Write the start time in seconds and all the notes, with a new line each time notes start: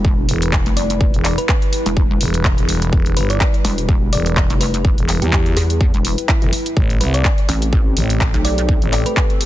Already playing: E1 G3 E4 A4 B4 G5
0.05 kick
0.29 E1, open hi-hat
0.42 closed hi-hat
0.53 kick, clap
0.66 F1, closed hi-hat
0.77 D5, open hi-hat
0.90 closed hi-hat
1.01 kick
1.14 E1, closed hi-hat
1.25 D5, clap, open hi-hat
1.38 B4, closed hi-hat
1.49 B4, kick, clap
1.62 closed hi-hat
1.73 open hi-hat
1.86 E1, closed hi-hat
1.97 kick
2.10 E1
2.21 E1, open hi-hat
2.34 closed hi-hat
2.45 kick, clap
2.58 E1, closed hi-hat
2.69 open hi-hat
2.82 closed hi-hat
2.93 E1, kick
3.06 closed hi-hat
3.17 G1 B4, open hi-hat
3.30 D5, closed hi-hat
3.41 kick, clap
3.54 closed hi-hat
3.65 E1, open hi-hat
3.78 closed hi-hat
3.89 kick
4.13 E1 D5, open hi-hat
4.26 D5, closed hi-hat
4.37 kick, clap
4.50 F1, closed hi-hat
4.61 B4, open hi-hat
4.74 closed hi-hat
4.85 kick
4.98 E1, closed hi-hat
5.09 clap, open hi-hat
5.22 E2 G4, closed hi-hat
5.33 G4, kick, clap
5.46 closed hi-hat
5.57 E2, open hi-hat
5.70 closed hi-hat
5.81 kick
5.94 E1, closed hi-hat
6.05 open hi-hat
6.18 closed hi-hat
6.29 E4, kick, clap
6.42 F1 E4, closed hi-hat
6.53 open hi-hat
6.66 closed hi-hat
6.77 A1 A3 C4 G4, kick
6.90 closed hi-hat
7.01 C2 B4, open hi-hat
7.13 A4 D5, closed hi-hat
7.25 kick, clap
7.38 closed hi-hat
7.49 A1, open hi-hat
7.57 G5
7.62 closed hi-hat
7.73 kick
7.97 A1, open hi-hat
8.10 closed hi-hat
8.21 kick, clap
8.34 B1, closed hi-hat
8.45 D5, open hi-hat
8.58 closed hi-hat
8.69 kick
8.82 A1, closed hi-hat
8.93 D5, clap, open hi-hat
9.06 B4, closed hi-hat
9.17 B4, kick, clap
9.30 closed hi-hat
9.41 open hi-hat